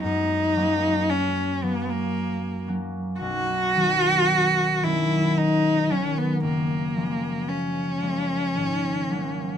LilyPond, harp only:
\new Staff \with { instrumentName = "Harp" } { \time 3/4 \key fis \major \tempo 4 = 56 <fis, fis cis'>8 <fis ais cis'>4 <fis ais cis'>4 <fis ais cis'>8 | b,,8 <dis fis b cis'>4 <dis fis b cis'>4 <dis fis b cis'>8 | fis,,8 <eis gis ais cis'>4 <eis gis ais cis'>8 gis,,8 <fis ais b cis'>8 | }